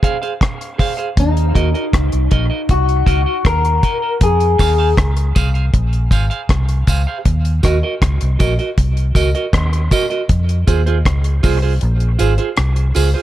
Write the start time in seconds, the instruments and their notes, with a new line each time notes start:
0.03 clean electric guitar G#4 C5 F5, kick, closed hi-hat
0.22 clean electric guitar G#4 C5 F5, closed hi-hat
0.41 kick, cross-stick, closed hi-hat
0.61 closed hi-hat
0.78 clean electric guitar G#4 C5 F5, kick, open hi-hat
0.97 clean electric guitar G#4 C5 F5, closed hi-hat
1.17 fingered electric bass D#2, clean electric guitar D#4, kick, closed hi-hat
1.37 closed hi-hat
1.55 fingered electric bass D#2, clean electric guitar F#4 A#4 D#5, kick, closed hi-hat
1.74 clean electric guitar F#4 A#4 D#5, closed hi-hat
1.93 fingered electric bass C#2, kick, cross-stick, closed hi-hat
2.12 fingered electric bass C2, closed hi-hat
2.31 fingered electric bass A#1, clean electric guitar F#4 A#4 D#5, kick, closed hi-hat
2.50 clean electric guitar F#4 A#4 D#5
2.69 fingered electric bass C2, clean electric guitar F#4, kick, closed hi-hat
2.89 closed hi-hat
3.06 fingered electric bass C#2, clean electric guitar F#4 A#4 D#5, kick, closed hi-hat
3.26 clean electric guitar F#4 A#4 D#5
3.45 fingered electric bass D#2, clean electric guitar A#4, kick, cross-stick, closed hi-hat
3.65 closed hi-hat
3.83 clean electric guitar F#4 A#4 D#5, kick, closed hi-hat
4.02 clean electric guitar F#4 A#4 D#5
4.21 fingered electric bass F2, clean electric guitar G#4, kick, closed hi-hat
4.40 closed hi-hat
4.58 fingered electric bass D#2, clean electric guitar G#4 C5 F5, kick, cross-stick, open hi-hat, tambourine
4.78 clean electric guitar G#4 C5 F5
4.97 fingered electric bass C#2, kick, cross-stick, closed hi-hat
5.17 closed hi-hat
5.35 fingered electric bass C2, clean electric guitar G#4 C5 F5, kick, closed hi-hat, tambourine
5.54 clean electric guitar G#4 C5 F5, closed hi-hat
5.74 fingered electric bass A#1, kick, closed hi-hat
5.93 closed hi-hat
6.11 fingered electric bass G#1, clean electric guitar G#4 C5 F5, kick, closed hi-hat, tambourine
6.30 clean electric guitar G#4 C5 F5, closed hi-hat
6.49 fingered electric bass C2, kick, cross-stick, closed hi-hat
6.69 closed hi-hat
6.87 fingered electric bass C#2, clean electric guitar G#4 C5 F5, kick, closed hi-hat, tambourine
7.07 clean electric guitar G#4 C5 F5
7.25 fingered electric bass D#2, kick, closed hi-hat
7.45 closed hi-hat
7.63 fingered electric bass D#2, clean electric guitar F#4 A#4 D#5, kick, cross-stick, closed hi-hat, tambourine
7.83 clean electric guitar F#4 A#4 D#5
8.02 fingered electric bass C#2, kick, cross-stick, closed hi-hat
8.21 fingered electric bass C2, closed hi-hat
8.39 fingered electric bass A#1, clean electric guitar F#4 A#4 D#5, kick, closed hi-hat, tambourine
8.59 clean electric guitar F#4 A#4 D#5, closed hi-hat
8.78 fingered electric bass C2, kick, closed hi-hat
8.97 closed hi-hat
9.15 fingered electric bass C#2, clean electric guitar F#4 A#4 D#5, kick, closed hi-hat, tambourine
9.35 clean electric guitar F#4 A#4 D#5, closed hi-hat
9.53 fingered electric bass D#2, kick, cross-stick, closed hi-hat
9.73 closed hi-hat
9.91 clean electric guitar F#4 A#4 D#5, kick, closed hi-hat, tambourine
10.10 clean electric guitar F#4 A#4 D#5, closed hi-hat
10.29 fingered electric bass F2, kick, closed hi-hat
10.49 closed hi-hat
10.67 fingered electric bass D#2, clean electric guitar F4 G#4 C5, kick, closed hi-hat, tambourine
10.86 clean electric guitar F4 G#4 C5, closed hi-hat
11.05 fingered electric bass C#2, kick, cross-stick, closed hi-hat
11.24 closed hi-hat
11.43 fingered electric bass C2, clean electric guitar F4 G#4 C5, kick, open hi-hat, tambourine
11.62 clean electric guitar F4 G#4 C5
11.81 fingered electric bass A#1, closed hi-hat
12.00 closed hi-hat
12.19 fingered electric bass G#1, clean electric guitar F4 G#4 C5, closed hi-hat, tambourine
12.38 clean electric guitar F4 G#4 C5, closed hi-hat
12.57 fingered electric bass C2, cross-stick, closed hi-hat
12.76 closed hi-hat
12.95 fingered electric bass C#2, clean electric guitar F4 G#4 C5, open hi-hat, tambourine
13.14 clean electric guitar F4 G#4 C5